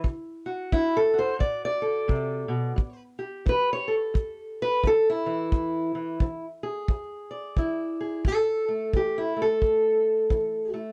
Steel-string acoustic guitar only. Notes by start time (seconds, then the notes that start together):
0.04 D3
0.46 F#4
0.72 D4 E4
0.97 A4
1.14 F#4
1.19 C5
1.39 A2 D5
1.65 D5
1.82 A4
2.08 C3
2.48 B2
2.76 A2
3.19 G4
3.46 E3 B4
3.73 C#5
3.88 A4
4.14 E2
4.62 B4
4.83 E3 A4
5.10 E4
5.26 E3
5.53 E2
5.95 E3
6.22 E3
6.63 G#4
6.90 E2
7.31 D5
7.57 E3 E4
8.01 G#4
8.26 A2 A4
8.68 A3
8.94 E3 G4
9.18 E4
9.36 A3
9.42 A4
9.61 E2
10.30 E3
10.74 A3